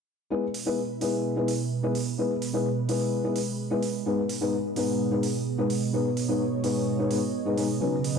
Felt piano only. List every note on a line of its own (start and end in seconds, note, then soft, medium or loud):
0.30 0.43 G#3 medium
0.30 0.43 B3 medium
0.30 0.43 E4 medium
0.30 0.43 B4 medium
0.66 0.78 G#3 medium
0.66 0.78 B3 medium
0.66 0.78 E4 medium
0.66 0.79 B4 medium
1.01 1.33 G#3 medium
1.01 1.34 B3 medium
1.01 1.34 E4 medium
1.01 1.34 B4 medium
1.36 1.48 G#3 medium
1.36 1.48 B3 medium
1.36 1.49 E4 medium
1.36 1.49 B4 medium
1.83 1.91 G#3 medium
1.83 1.91 B3 medium
1.83 1.91 E4 medium
1.83 1.91 B4 medium
2.18 2.30 G#3 medium
2.18 2.31 B3 medium
2.18 2.31 E4 medium
2.18 2.31 B4 medium
2.53 2.65 G#3 medium
2.53 2.66 B3 medium
2.53 2.66 E4 medium
2.53 2.66 B4 medium
2.88 3.21 G#3 medium
2.88 3.21 B3 medium
2.88 3.21 E4 medium
2.88 3.21 B4 medium
3.23 3.36 G#3 medium
3.23 3.36 B3 medium
3.23 3.36 E4 medium
3.23 3.36 B4 medium
3.70 3.78 G#3 medium
3.70 3.78 B3 medium
3.70 3.79 E4 medium
3.70 3.79 B4 medium
4.05 4.18 G#2 medium
4.05 4.18 G#3 medium
4.05 4.18 B3 medium
4.05 4.18 D#4 medium
4.05 4.18 B4 medium
4.41 4.53 G#2 medium
4.41 4.53 G#3 medium
4.41 4.53 B3 medium
4.41 4.53 D#4 medium
4.41 4.54 B4 medium
4.76 5.08 G#2 medium
4.76 5.09 G#3 medium
4.76 5.09 B3 medium
4.76 5.09 D#4 medium
4.76 5.09 B4 medium
5.11 5.23 G#2 medium
5.11 5.23 G#3 medium
5.11 5.24 B3 medium
5.11 5.24 D#4 medium
5.11 5.24 B4 medium
5.58 5.66 G#2 medium
5.58 5.66 G#3 medium
5.58 5.66 B3 medium
5.58 5.66 D#4 medium
5.58 5.66 B4 medium
5.93 6.05 G#2 medium
5.93 6.05 G#3 medium
5.93 6.06 B3 medium
5.93 6.06 D#4 medium
5.93 6.06 B4 medium
6.28 6.40 G#2 medium
6.28 6.41 G#3 medium
6.28 6.41 B3 medium
6.28 6.41 D#4 medium
6.28 6.41 B4 medium
6.63 6.96 G#2 medium
6.63 6.96 G#3 medium
6.63 6.96 B3 medium
6.63 6.96 D#4 medium
6.63 6.96 B4 medium
6.98 7.08 G#2 medium
6.98 7.08 G#3 medium
6.98 7.08 B3 medium
6.98 7.08 D#4 medium
6.98 7.09 B4 medium
7.10 7.18 G#2 medium
7.10 7.18 G#3 medium
7.10 7.18 B3 medium
7.10 7.18 D#4 medium
7.10 7.19 B4 medium
7.45 7.55 G#2 medium
7.45 7.55 G#3 medium
7.45 7.56 B3 medium
7.45 7.56 D#4 medium
7.45 7.56 B4 medium
7.57 7.65 G#3 medium
7.57 7.65 B3 medium
7.57 7.65 D#4 medium
7.57 7.65 B4 medium
7.80 7.93 B2 medium
7.80 7.93 F#3 medium
7.80 7.93 C#4 medium
7.80 7.93 D#4 medium
7.80 7.93 B4 medium
8.16 8.19 B2 medium
8.16 8.19 F#3 medium